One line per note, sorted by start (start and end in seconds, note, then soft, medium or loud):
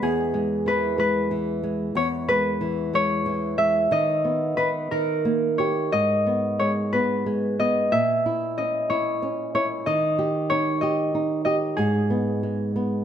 0.00 1.92 E2 medium
0.00 2.30 G#4 medium
0.00 0.67 B4 medium
0.00 0.62 C#5 medium
0.34 0.97 G#3 soft
0.66 1.30 E3 soft
0.66 0.99 B4 medium
0.98 1.62 G#3 soft
0.98 2.28 B4 medium
1.31 1.94 E3 soft
1.63 1.95 G#3 soft
1.95 3.87 E2 medium
1.95 2.05 C#5 medium
2.28 2.92 G#3 soft
2.28 4.33 B4 medium
2.61 3.25 E3 medium
2.93 3.57 G#3 medium
2.93 4.86 C#5 medium
3.26 3.89 E3 medium
3.58 3.90 G#3 soft
3.58 3.98 E5 medium
3.91 4.57 D#3 medium
3.91 5.70 D#5 medium
4.24 4.89 B3 soft
4.57 4.90 D#3 soft
4.57 4.66 B4 medium
4.91 5.89 D#3 medium
4.91 6.99 A#4 medium
5.25 5.90 A#3 soft
5.58 5.92 G4 soft
5.58 6.59 C#5 medium
5.92 7.88 G#2 medium
5.92 7.59 D#5 medium
6.27 6.92 B3 soft
6.59 7.25 G#3 soft
6.59 6.68 C#5 medium
6.93 7.58 B3 soft
6.93 8.98 B4 medium
7.26 7.90 G#3 soft
7.59 7.91 B3 soft
7.59 7.98 D#5 medium
7.92 9.83 A#2 medium
7.92 8.64 E5 medium
8.26 8.89 E4 soft
8.58 9.21 C#4 soft
8.58 9.86 D#5 medium
8.90 9.53 E4 medium
8.90 9.54 C#5 medium
9.22 9.85 C#4 soft
9.55 9.86 E4 soft
9.55 9.63 C#5 medium
9.86 11.74 D#3 medium
9.86 10.81 D#5 medium
10.19 10.81 G4 soft
10.50 11.13 D#4 soft
10.50 12.41 C#5 medium
10.81 11.45 G4 soft
10.81 11.44 D#5 medium
11.15 11.76 D#4 soft
11.45 11.77 G4 soft
11.45 11.54 D#5 medium
11.77 13.04 G#2 medium
11.77 13.04 G#4 medium
12.10 12.75 B3 soft
12.43 13.04 G#3 soft
12.76 13.04 B3 soft